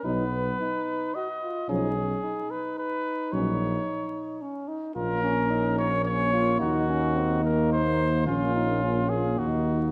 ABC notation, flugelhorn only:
X:1
M:3/4
L:1/8
Q:1/4=109
K:F#
V:1 name="Flugelhorn"
B,2 D2 F E | D C D4- | D4 C D | [K:Bbm] F D E z D F |
E D C B,3 | D E D F E2 |]